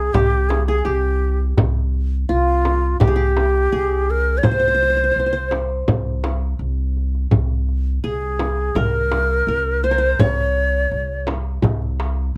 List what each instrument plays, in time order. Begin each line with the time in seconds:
Already playing: upright bass C2, ney G#4, qanun G#4
0.13 upright bass C2, ney G4, qanun G4, frame drum, darbuka dum
0.33 darbuka ka
0.49 ney G#4, darbuka tek, frame drum
0.67 ney G#4, qanun G#4, darbuka ka
0.79 ney G#4
0.85 upright bass C2, qanun G4, ney G4
1.22 darbuka ka
1.40 darbuka ka
1.58 upright bass C2, darbuka dum, frame drum
1.94 darbuka ka
2.29 upright bass C2, qanun F4, ney F4
2.65 darbuka tek, frame drum
3.00 upright bass C2, qanun G4, ney G4, darbuka dum, frame drum
3.08 qanun G#4
3.16 qanun G4, darbuka ka
3.37 darbuka tek, frame drum
3.55 darbuka ka
3.72 upright bass C2, qanun G#4
4.09 ney A#4, darbuka ka
4.38 ney C#5
4.43 upright bass C2, qanun C5, ney C5, frame drum, darbuka dum
4.51 qanun C5
4.60 qanun C5
4.68 qanun C5
4.74 qanun C5
4.81 qanun C5, darbuka ka
4.90 qanun C5
4.97 qanun C5
5.04 qanun C5
5.11 qanun C5
5.16 upright bass C2, qanun C5, darbuka ka
5.26 qanun C5
5.33 qanun C5
5.51 darbuka tek, frame drum
5.88 upright bass C2, frame drum, darbuka dum
6.06 darbuka ka
6.24 darbuka tek, frame drum
6.42 darbuka ka
6.59 upright bass C2
6.97 darbuka ka
7.15 darbuka ka
7.31 upright bass C2, frame drum, darbuka dum
7.69 darbuka ka
8.04 upright bass C2, qanun G#4, ney G#4, darbuka ka
8.39 darbuka tek, frame drum
8.75 upright bass C2, qanun A#4, ney A#4, frame drum, darbuka dum
8.94 darbuka ka
9.12 darbuka tek, frame drum
9.29 darbuka ka
9.47 upright bass C2, qanun A#4
9.83 ney C5, qanun C5, darbuka ka
9.91 qanun A#4
9.98 qanun C5, darbuka ka
10.19 upright bass C2, ney C#5, qanun C#5, frame drum, darbuka dum
10.57 darbuka ka
10.91 upright bass C2, darbuka ka
11.27 darbuka tek, frame drum
11.62 upright bass C2, frame drum, darbuka dum
11.82 darbuka ka
12.00 darbuka tek
12.18 darbuka ka